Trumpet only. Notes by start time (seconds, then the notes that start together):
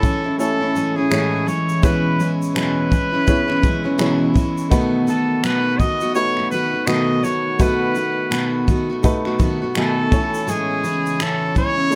Already playing: A4
0.39 A4
0.96 G#4
1.48 C#5
1.84 B4
2.55 B4
5.08 A4
5.44 B4
5.79 D#5
6.15 C#5
6.50 B4
6.87 D#5
7.23 C#5
7.61 B4
9.78 A4
10.49 G#4
11.22 A4
11.58 C#5